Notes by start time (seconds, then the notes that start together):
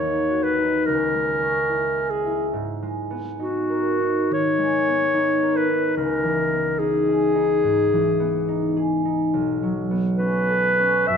Already playing: D#2 D#3 A#3 C#4 C#5
0.03 D#4
0.30 F#4
0.43 B4
0.59 D#4
0.85 C#2 A#4
1.15 G#3
1.42 C#4
1.70 E4
1.98 G#4
2.10 G#4
2.26 E4
2.53 G#2
2.82 G#3
3.11 B3
3.40 D#4 F#4
3.70 A#4
4.00 D#4
4.30 D#3 C#5
4.58 G#3
4.87 B3
5.14 D#4
5.42 A#4
5.57 B4
5.69 D#4
5.97 C#2 A#4
6.23 E3
6.52 B3
6.79 D#4 G#4
7.08 G#4
7.36 D#4
7.64 G#2
7.93 E3
8.20 B3
8.48 D#4
8.77 G#4
9.05 D#4
9.34 B1
9.63 F#3
9.91 B3
10.18 C#4 B4
10.49 A4
10.79 C#4
11.07 F#2 E5